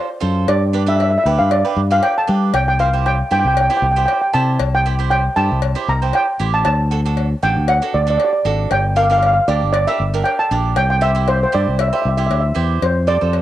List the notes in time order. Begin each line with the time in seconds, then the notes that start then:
Already playing: C5
0.21 F#2 F4 A4 C5
0.48 G2 D5, cowbell
0.73 D4 G4 B4
0.86 D4 G4 B4 E5
0.96 E5, cowbell
1.02 E5
1.11 E5
1.18 E5
1.24 D2 D4 G4 B4 E5
1.39 G2 F5
1.51 D5, cowbell
1.64 D4 G4 B4
1.76 G2
1.90 D4 G4 B4 F5
2.03 G5, cowbell
2.18 A5
2.27 G3 D4 G4 B4
2.54 C2 G5, cowbell
2.68 G5
2.79 E4 G4 C5 F5
2.93 E4 G4 C5
3.06 G5, cowbell
3.31 G2 E4 G4 C5 G5
3.40 G5
3.45 C2 G5
3.54 G5, cowbell
3.61 G5
3.70 E4 G4 C5 G5
3.77 G5
3.82 C2 G5
3.91 G5
3.96 E4 G4 C5 G5
4.06 G5, cowbell
4.13 G5
4.21 G5
4.33 C3 E4 G4 C5 A5
4.59 C2, cowbell
4.75 G5
4.86 E4 G4 C5
4.99 E4 G4 C5
5.10 G5, cowbell
5.36 G2 E4 G4 C5 A5
5.51 C2
5.62 cowbell
5.75 E4 G4 C5
5.88 C2 A#5
6.02 E4 G4 C5
6.13 G5, cowbell
6.40 A1 E4 G4 C5
6.54 A5
6.65 D2 A5, cowbell
6.91 D4 F#4 A4
7.05 D4 F#4 A4
7.17 cowbell
7.43 A1 D4 F#4 A4 G5
7.57 D2
7.68 F#5, cowbell
7.82 D4 F#4 A4
7.94 D2 D5
8.02 D5
8.07 D4 F#4 A4 D5
8.18 D5, cowbell
8.25 D5
8.33 D5
8.45 G#1 D4 F#4 A4
8.71 G1 G5, cowbell
8.96 D4 G4 A#4 F5
9.04 F5
9.10 D4 G4 A#4 F5
9.18 F5
9.23 F5, cowbell
9.34 F5
9.48 D2 D4 G4 A#4 D5
9.63 G1
9.73 D5, cowbell
9.87 D4 G4 A#4 E5
10.00 G1
10.14 D4 G4 A#4
10.24 G5, cowbell
10.39 A5
10.51 A#1 D4 G4 A#4
10.76 C2 G5, cowbell
10.90 G5
11.01 E4 G4 C5 E5
11.15 E4 G4 C5
11.28 C5, cowbell
11.43 C5
11.52 G2 E4 G4 C5 D5
11.67 C2
11.79 E5, cowbell
11.88 E5
11.93 E4 G4 C5 E5
12.02 C2 E5
12.09 E5
12.17 E4 G4 C5 E5
12.27 D2 E5
12.31 E5, cowbell
12.40 E5
12.55 E2 E4 G4 C5
12.82 F2 C5, cowbell
13.07 F4 A4 C5 D5
13.21 F2 F4 A4 C5
13.33 cowbell